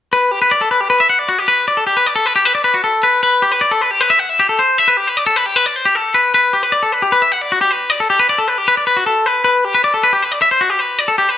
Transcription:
0.13 B4
0.31 G4
0.42 B4
0.51 D5
0.61 A4
0.71 B4
0.81 G4
0.90 B4
1.00 E5
1.09 F#5
1.19 D5
1.29 F#4
1.39 G4
1.48 B4
1.68 D5
1.77 A4
1.87 G4
1.97 B4
2.06 D5
2.16 A4
2.26 B4
2.36 G4
2.45 B4
2.55 D5
2.64 B4
2.74 F#4
2.84 A4
3.03 B4
3.23 B4
3.42 G4
3.52 B4
3.61 D5
3.71 A4
3.81 B4
3.91 G4
4.01 B4
4.10 E5
4.19 F#5
4.29 E5
4.40 G4
4.49 A4
4.59 C5
4.78 E5
4.88 B4
4.97 G4
5.07 B4
5.17 D5
5.27 A4
5.36 B4
5.46 G4
5.56 B4
5.66 D5
5.76 C5
5.85 G4
5.95 A4
6.14 B4
6.34 B4
6.53 G4
6.63 B4
6.72 D5
6.83 A4
6.92 B4
7.02 G4
7.12 B4
7.22 E5
7.32 F#5
7.42 D5
7.52 F#4
7.61 G4
7.71 B4
7.90 D5
8.00 A4
8.10 G4
8.20 B4
8.29 D5
8.38 A4
8.48 B4
8.58 G4
8.68 B4
8.77 D5
8.87 B4
8.97 F#4
9.06 A4
9.26 B4
9.44 B4
9.65 G4
9.75 B4
9.84 D5
9.94 A4
10.03 B4
10.13 G4
10.22 B4
10.32 D5
10.42 E5
10.51 C5
10.61 F#4
10.70 G4
10.79 B4
10.99 D5
11.08 A4
11.18 G4
11.29 B4

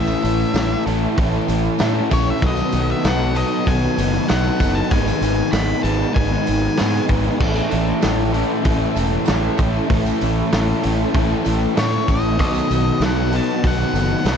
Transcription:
Already playing: A1 A2 E3 A3 C#4 E4 A4 E5
0.07 tambourine
0.22 A1 C#4 E4 A4, open hi-hat, tambourine
0.27 A3
0.39 tambourine
0.54 A1 A3 C#4, snare, open hi-hat, tambourine
0.58 E4 A4
0.86 A1 A2 E3 A3 C#4 E4 A4, open hi-hat, tambourine
1.17 A1 A2 E3 A3 C#4 E4 A4, kick, open hi-hat, tambourine
1.33 tambourine
1.48 A1 A3 C#4 E4 A4, open hi-hat, tambourine
1.79 A2 E3 A3 C#4 E4, snare, open hi-hat, tambourine
1.83 A4
2.10 A#1 A3 C#4 E4 A4 C#5, kick, open hi-hat, tambourine
2.30 E5
2.42 B1 B2 D#3 F#3 B3 D#4 A4, kick, open hi-hat
2.46 D#5
2.57 tambourine
2.72 B1 B3 D#4 A4, open hi-hat, tambourine
2.77 F#3
2.89 E5, tambourine
3.04 B1 F#3 B3 D#4 A4 F#5, snare, open hi-hat, tambourine
3.35 B2 F#3 B3 D#4 A4 D#5, open hi-hat, tambourine
3.66 B1 B2 D#3 F#3 B3 D#4 A4 G#5, kick, open hi-hat, tambourine
3.83 tambourine
3.97 F#1 F#3 B3 D#4 A4, open hi-hat, tambourine
4.28 B1 B2 F#3 B3 D#4 F#5, snare, open hi-hat, tambourine
4.32 A4
4.46 tambourine
4.60 F#1 F#3 B3 D#4 A4, kick, open hi-hat, tambourine
4.75 A5, tambourine
4.89 G#1 G#2 D#3 G#3 B3 D#4 G#4 B4 G#5, kick, open hi-hat, tambourine
5.08 tambourine
5.21 G#1 G#3 B3 D#4 G#4 B4, open hi-hat, tambourine
5.39 tambourine
5.52 G#1 G#3 B3 D#4 G#4 B4 B5, snare, open hi-hat, tambourine
5.83 G#1 G#2 D#3 G#3 B3 D#4 G#4 B4 A5, open hi-hat, tambourine
6.01 tambourine
6.14 G#1 G#2 D#3 G#3 B3 D#4 G#4 B4 G#5, kick, open hi-hat, tambourine
6.44 G#3 B3 D#4 G#4 B4, open hi-hat, tambourine
6.49 G#1
6.64 tambourine
6.77 G#2 D#3 G#3 B3 D#4 G#4 B4, snare, open hi-hat, tambourine
6.81 G#2
6.94 tambourine
7.07 G#1 G#3 B3 D#4 G#4 B4, kick, open hi-hat
7.26 tambourine
7.39 A1 A2 E3 A3 C#4 E4 A4, kick, crash
7.56 tambourine
7.69 A1 A3 C#4 E4 A4, open hi-hat, tambourine
7.87 tambourine
8.00 A1 A3 C#4 E4 A4, snare, open hi-hat, tambourine
8.31 E3 A3 C#4 E4 A4, open hi-hat
8.36 A2
8.62 A1 A2 E3 A3 C#4 E4 A4, kick, open hi-hat, tambourine
8.81 tambourine
8.94 E1 A3 C#4 E4 A4, open hi-hat, tambourine
9.25 A1 A2 E3 A3 C#4 E4 A4, snare, open hi-hat, tambourine
9.42 tambourine
9.57 A1 C#4 E4 A4, kick, open hi-hat, tambourine
9.61 A3
9.74 tambourine
9.88 A1 A2 E3 A3 C#4 E4 A4, kick, open hi-hat
10.06 tambourine
10.19 A1 A3 C#4 E4 A4, open hi-hat, tambourine
10.37 tambourine
10.50 A1 A3 C#4 E4 A4, snare, open hi-hat, tambourine
10.81 A1 E3 A3 C#4 E4 A4, open hi-hat, tambourine
10.86 A2
11.13 A1 A2 E3 A3 C#4 E4 A4, kick, open hi-hat, tambourine
11.31 tambourine
11.44 A1 A3 C#4 E4 A4, open hi-hat, tambourine
11.75 A2 E3 A3 C#4 E4 A4 C#5, snare, open hi-hat, tambourine
12.06 A1 A3 C#4 E4 A4, kick, open hi-hat, tambourine
12.11 D#5
12.24 tambourine
12.38 B1 B2 D#3 F#3 B3 D#4 A4, kick, open hi-hat
12.55 tambourine
12.70 B1 F#3 B3 D#4 A4, open hi-hat, tambourine
12.87 tambourine
13.00 B1 F#3 B3 D#4 A4, snare, open hi-hat, tambourine
13.05 F#5
13.31 B2 F#3 B3 D#4 A4, open hi-hat, tambourine
13.36 A5
13.62 B1 B2 D#3 F#3 B3 D#4 A4, kick, open hi-hat, tambourine
13.67 F#5
13.81 tambourine
13.93 F#1 F#3 B3 D#4 A4, open hi-hat, tambourine
14.24 B1 B2 F#3 B3 D#4 A4, snare, open hi-hat, tambourine

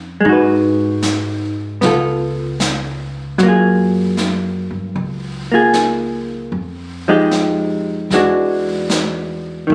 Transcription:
Already playing: F2 A#3 C#4 G#4 C5
0.20 G#3, brush sweep
0.25 G#2 D#4
0.29 F#4 B4
1.02 snare, hi-hat pedal
1.81 C#2 B3 F4, brush sweep, snare
1.86 A4
2.60 snare, hi-hat pedal
3.38 F#2 F#3, brush sweep, snare
3.43 A#3 F4
3.48 G#4
4.17 snare, hi-hat pedal
4.71 G2
4.96 C#2, brush sweep
5.52 A#3 F4 G#4
5.73 snare, hi-hat pedal
6.52 F2, brush sweep
7.08 F3 G#3 D#4 G4
7.31 snare, hi-hat pedal
8.10 E2 E3 G#3 D4 F#4, brush sweep, snare
8.90 snare, hi-hat pedal
9.67 D#2 D#3, brush sweep

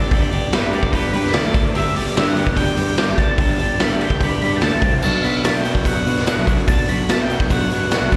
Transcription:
Already playing: G3 B3 D4 G4 D5
0.11 G1 G3 B3 D4 G4, kick, open hi-hat
0.21 D5
0.32 G3 B3 D4 G4, open hi-hat
0.53 G2 G3 B3 D4 G4 B4, snare, open hi-hat
0.73 G3 B3 D4 G4 D5, open hi-hat
0.83 G1, kick
0.92 G3 B3 D4 G4 B4, kick, open hi-hat
1.13 G2 G3 B3 D4 G4 B4, open hi-hat
1.25 snare
1.33 D2 D3 A3 D4 A4 D5, snare, open hi-hat
1.46 D2
1.53 D2 D3 A3 D4 A4, kick, open hi-hat
1.74 G1 G2 D3 G3 B3 D4 G4 E5, open hi-hat
1.95 G2 D3 G3 B3 D4 G4 D5, open hi-hat
2.15 G2 D3 G3 B3 D4 G4 E5, snare, open hi-hat
2.27 F#5
2.36 G2 D3 G3 B3 D4 G4, open hi-hat
2.47 G1, kick
2.55 G2 D3 G3 B3 D4 G4 G5, kick, open hi-hat
2.77 G2 D3 G3 B3 D4 G4, open hi-hat
2.97 G2 D3 G3 B3 D4 G4, snare, open hi-hat
3.09 G1
3.17 G2 D3 G3 B3 D4 G4 A5, kick, open hi-hat
3.38 G1 G2 D3 G3 B3 D4 G4, kick, open hi-hat
3.51 A5
3.59 G2 D3 G3 B3 D4 G4, open hi-hat
3.80 G2 D3 G3 B3 D4 G4 B5, snare, open hi-hat
4.01 G2 D3 G3 B3 D4 G4 G5, open hi-hat
4.10 G1, kick
4.21 G2 D3 G3 B3 D4 G4 B5, kick, open hi-hat
4.42 G2 D3 G3 B3 D4 G4 B5, open hi-hat
4.56 G5
4.61 D2 D3 A3 D4 A4 A5, snare, open hi-hat
4.73 D2
4.82 C2 C3 G3 C4 G4, kick, open hi-hat
5.02 B1 B2 F#3 B3 D4 F#4 A5, crash, shaker
5.23 B2 F#3 B3 D4 F#4 B5, open hi-hat, shaker
5.44 B2 F#3 B3 D4 F#4 A5, snare, open hi-hat, shaker
5.56 G5
5.65 B2 F#3 B3 D4 F#4, open hi-hat, shaker
5.75 B1, kick, shaker
5.85 B2 F#3 B3 D4 F#4 F#5, kick, open hi-hat, shaker
6.06 B2 F#3 B3 D4 F#4, open hi-hat, shaker
6.17 snare
6.26 B2 F#3 B3 D4 F#4, snare, open hi-hat, shaker
6.38 B1
6.47 B2 F#3 B3 D4 F#4, kick, open hi-hat, shaker
6.68 B1 B2 F#3 B3 D4 F#4 A5, kick, open hi-hat, shaker
6.89 B2 F#3 B3 D4 F#4 B5, open hi-hat, shaker
7.09 B2 F#3 B3 D4 F#4 A5, snare, open hi-hat, shaker
7.22 G5
7.30 B2 F#3 B3 D4 F#4, open hi-hat, shaker
7.40 B1, kick, shaker
7.50 B2 F#3 B3 D4 F#4 F#5, kick, open hi-hat, shaker
7.70 B2 F#3 B3 D4 F#4, open hi-hat, shaker
7.91 B2 F#3 B3, snare, open hi-hat, shaker
7.95 D4 F#4
8.02 B1
8.12 B2, kick, open hi-hat, shaker

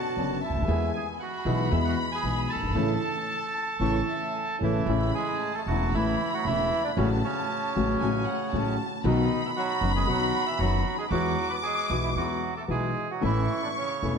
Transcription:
Already playing: F#4 F#5 A5
0.17 F#1 F#2 D3 B3 C#4 D4 F#4
0.41 E4 E5
0.50 C#2
0.55 D2
0.61 D#2
0.67 E2 E3 G#3 B3 E4 G#4 G#5
0.93 G#4 G#5
1.20 F#4 F#5 B5
1.45 B1 B2 E3 G#3 B3 E4 G#4
1.71 E2 E3 G#3 B3 E4 G#4 E5
1.84 F#4 F#5
2.12 G#4 G#5
2.23 B1 B2 E3 G#3 B3 E4 G#4
2.50 A4 A5
2.55 F#1
2.62 G1
2.69 G#1
2.74 A1 C#3 E3 A3 C#4 E4 A4 C#5 A5
3.80 A1 C#3 E3 A3 C#4 E4 A4 C#5 C#6
4.08 E5
4.33 G#5
4.59 A1 C#3 A3 C#4 E4 A4 C#5 A5
4.63 E3 E4
4.86 A1 A2 C#3 E3 A3 C#4 E4 B5
5.15 G#3 G#4
5.40 A5
5.54 A3 A4
5.66 E1 E2 C#3 F#3 A3 C#4 E4 F#4
5.70 E3 E4
5.92 A1 A2 C#3 E3 A3 C#4 E4 B5
5.97 E3
6.34 F#3 F#4
6.45 E1 E2 C#3 E3 A3 C#4 E4
6.49 E3
6.84 D3 D4
6.96 A1 A2 C#3 F#3 A3 C#4 F#4 A5
7.24 C#3 C#4
7.75 A1 A2 C#3 F#3 A3 C#4 F#4
8.00 A1 A2 C#3 F#3 A3 C#4 F#4 G#5
8.26 F#5
8.52 A1 A2 C#3 F#3 A3 C#4 F#4 A5
9.03 B1 B2 D#3 F#3 B3 D#4 F#4 B5
9.08 D#3
9.45 E3 E4
9.56 F#3 F#4
9.81 F#1 F#2 D#3 F#3 B3 D#4 F#4
9.96 G#3 G#4
10.06 B1 B2 D#3 F#3 B3 D#4 F#4
10.46 E3 E4
10.59 F#1 F#2 D#3 F#3 B3 D#4 F#4
10.98 G#3 G#4
11.11 E2 E3 F#3 G#3 B3 E4 F#4 D6
11.50 B3 B4
11.63 G#3 G#4
11.89 B1 B2 E3 G#3 B3 E4 F#4
12.04 E3 E4
12.16 E2 E3 G#3 B3 E4 F#4
12.20 F#3
12.57 A3 A4
12.68 B1 B2 E3 G#3 B3 E4 F#4 G#4
12.73 G#3
13.11 F#3 F#4
13.21 A1 A2 E3 A3 C#4 E4 A4 C#6
13.26 E3
13.63 D3 D4
13.77 C#3 C#4
14.02 E1 E2 E3 A3 C#4 E4 A4

